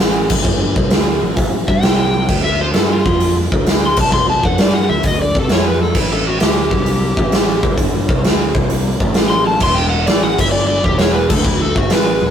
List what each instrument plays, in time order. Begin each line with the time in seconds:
Already playing: fingered electric bass A1
0.30 fingered electric bass G1, kick, crash
0.45 kick
0.76 fingered electric bass C2, kick
0.90 fingered electric bass D2, snare, open hi-hat
1.22 fingered electric bass A1
1.36 fingered electric bass A1, kick, open hi-hat
1.68 fingered electric bass G2, electric slide guitar E5, kick
1.82 fingered electric bass C2, electric slide guitar G5, snare, open hi-hat
2.29 fingered electric bass D2, kick, crash
2.44 electric slide guitar E5
2.61 electric slide guitar C5
2.73 fingered electric bass G2, electric slide guitar A4, snare, open hi-hat
2.92 electric slide guitar F4
3.06 fingered electric bass F2, kick
3.20 open hi-hat
3.52 fingered electric bass D2, kick
3.66 snare, open hi-hat
3.86 electric slide guitar C6
3.97 fingered electric bass C2, kick, crash
4.01 electric slide guitar A5
4.12 electric slide guitar C6, kick
4.30 electric slide guitar A5
4.44 fingered electric bass F2, electric slide guitar F#5, kick
4.58 fingered electric bass G2, electric slide guitar D5, snare, open hi-hat
4.74 electric slide guitar F#5
4.89 fingered electric bass D2, electric slide guitar E5
5.03 fingered electric bass D2, kick, open hi-hat
5.07 electric slide guitar D#5
5.22 electric slide guitar D5
5.35 fingered electric bass C3, kick
5.39 electric slide guitar A4
5.49 fingered electric bass F2, electric slide guitar C#5, snare, open hi-hat
5.68 electric slide guitar B4
5.82 electric slide guitar A4
5.95 fingered electric bass A1, kick, crash
6.00 electric slide guitar E4
6.12 electric slide guitar A4
6.26 electric slide guitar F#4
6.40 fingered electric bass D2, electric slide guitar G4, snare, open hi-hat
6.71 fingered electric bass C2, kick
6.86 open hi-hat
7.17 fingered electric bass A1, kick
7.32 snare, open hi-hat
7.63 fingered electric bass G1, kick
7.78 kick, open hi-hat
8.09 fingered electric bass C2, kick
8.23 fingered electric bass D2, snare, open hi-hat
8.55 fingered electric bass C2, kick
8.70 open hi-hat
9.00 fingered electric bass A1, kick
9.14 snare, open hi-hat
9.30 electric slide guitar C6
9.47 electric slide guitar A5
9.60 fingered electric bass E1, electric slide guitar C6, kick, crash
9.75 electric slide guitar G5
9.90 electric slide guitar F#5
10.06 fingered electric bass A1, electric slide guitar D5, snare, open hi-hat
10.23 electric slide guitar F#5
10.38 fingered electric bass G1, electric slide guitar E5, kick, crash
10.51 electric slide guitar D5
10.67 electric slide guitar D5
10.84 fingered electric bass E1, electric slide guitar G4, kick
10.98 electric slide guitar C#5, snare, open hi-hat
11.15 electric slide guitar B4
11.30 fingered electric bass D2, electric slide guitar A4, kick, crash
11.45 electric slide guitar E4, kick
11.61 electric slide guitar A4
11.75 fingered electric bass G1, electric slide guitar F#4, kick
11.90 fingered electric bass A1, electric slide guitar B4, snare, open hi-hat
12.21 fingered electric bass E1